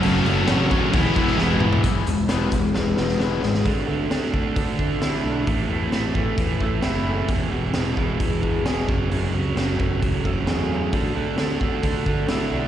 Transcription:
<<
  \new Staff \with { instrumentName = "Overdriven electric guitar" } { \clef bass \time 4/4 \key e \mixolydian \tempo 4 = 132 <fis a cis' fis'>8 <a cis' fis'>8 <fis a cis' fis'>8 <a cis' fis'>8 <e gis b e'>8 <gis b e'>8 <e gis b e'>4 | <e gis b>8 <e gis>8 <e gis b>8 <e gis>8 <e gis>8 <e gis>8 <e gis b>8 <e gis>8 | r1 | r1 |
r1 | r1 | r1 | }
  \new Staff \with { instrumentName = "Clean electric guitar" } { \clef bass \time 4/4 \key e \mixolydian r1 | e,8 b,8 e8 gis8 e8 b8 gis8 e8 | d8 a8 d8 a8 d8 a8 e'8 d'8 | a,8 e8 e8 a8 e8 a8 e'8 cis'8 |
e,8 b,8 e8 gis8 e8 gis8 gis'8 fis,8 | fis,8 cis8 fis8 a8 fis8 a8 gis'8 cis'8 | d8 a8 d8 a8 d8 a8 e'8 d'8 | }
  \new Staff \with { instrumentName = "Distorted electric guitar" } { \clef bass \time 4/4 \key e \mixolydian <fis a cis' fis'>8 <a cis' fis'>8 <fis a cis' fis'>8 <fis a cis' fis'>8 <e gis b e'>8 <e gis b e'>8 <e gis b e'>8 <gis b e'>8 | r1 | <d a d'>8 <d a d'>8 <d a d'>8 <d a d'>8 <d a d'>8 <d a d'>8 <d a d'>8 <d a d'>8 | <a, e a>8 <a, e a>8 <a, e a>8 <a, e a>8 <a, e a>8 <a, e a>8 <a, e a>8 <a, e a>8 |
<e, b, e>8 <e, b, e>8 <e, b, e>8 <e, b, e>8 <e, b, e>8 <e, b, e>8 <e, b, e>8 <fis, cis fis>8 | <fis, cis fis>8 <fis, cis fis>8 <fis, cis fis>8 <fis, cis fis>8 <fis, cis fis>8 <fis, cis fis>8 <fis, cis fis>8 <fis, cis fis>8 | <d a d'>8 <d a d'>8 <d a d'>8 <d a d'>8 <d a d'>8 <d a d'>8 <d a d'>8 <d a d'>8 | }
  \new Staff \with { instrumentName = "Distorted electric guitar" } { \clef bass \time 4/4 \key e \mixolydian <fis, cis fis>8 <fis, cis fis>8 <fis, cis fis>8 <fis, cis fis>8 <e, b, e>8 <e, b, e>8 <e, b, e>8 <e, b, e>8 | r1 | r1 | r1 |
r1 | r1 | r1 | }
  \new Staff \with { instrumentName = "Fingered electric bass" } { \clef bass \time 4/4 \key e \mixolydian fis,,8 fis,,8 a,,8 d,8 e,,8 e,,8 e,,8 a,,8 | e,,8 e,,8 e,,8 e,,8 e,,8 e,,8 e,,8 gis,,8 | d,8 d,8 d,8 d,8 d4 d,8 b,,8 | a,,8 e,8 a,,8 a,,8 e,8 a,,8 fis,,4 |
e,,8 e,,8 e,,8 e,,8 e,4 e,,8 fis,,8 | fis,,8 cis,8 fis,,8 fis,,8 cis,8 fis,,8 e,4 | d,8 d,8 d,8 d,8 d4 d,8 b,,8 | }
  \new DrumStaff \with { instrumentName = "Drums" } \drummode { \time 4/4 cymc8 cymc8 <cymc sn>8 <cymc bd>8 <cymc bd>8 <cymc bd>16 sn16 sn8 toml16 tomfh16 | <hh bd>8 hh8 <hh sn>8 <hh bd>8 sn8 sn16 sn16 sn8 sn16 sn16 | <hho bd>4 <hho sn>8 bd8 <hho bd>8 bd8 <hho sn>4 | <hho bd>4 <hho sn>8 bd8 <hho bd>8 bd8 <hho sn>4 |
<hho bd>4 <hho sn>8 bd8 <hho bd>8 bd8 <hho sn>8 bd8 | hho4 <hho sn>8 bd8 <hho bd>8 bd8 <hho sn>4 | <hho bd>4 <hho sn>8 bd8 <hho bd>8 bd8 <hho sn>4 | }
>>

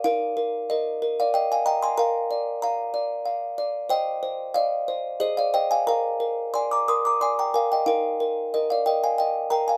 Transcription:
\new Staff \with { instrumentName = "Music box" } { \time 3/4 \key ees \major \tempo 4 = 92 << { <bes' f''>4 <bes' ees''>8. <d'' f''>16 <ees'' g''>16 <f'' aes''>16 <g'' bes''>16 <aes'' c'''>16 | <f'' bes''>4 <f'' bes''>4. r8 | <ees'' g''>4 <d'' f''>4 <c'' ees''>16 <d'' f''>16 <ees'' g''>16 <f'' aes''>16 | <f'' bes''>4 <aes'' c'''>16 <bes'' d'''>16 <c''' ees'''>16 <bes'' d'''>16 <aes'' c'''>16 <g'' bes''>16 <f'' aes''>16 <ees'' g''>16 |
<bes' f''>4 <bes' ees''>16 <d'' f''>16 <ees'' g''>16 <f'' aes''>16 <ees'' g''>8 <g'' bes''>16 <f'' aes''>16 | } \\ { ees'8 bes'4 bes'4 ees''8 | bes'8 d''4 d''8 f''8 d''8 | c''8 c''8 ees''8 c''8 aes'8 c''8 | bes'8 bes'8 d''8 bes'8 d''8 bes'8 |
ees'8 bes'4 bes'4 bes'8 | } >> }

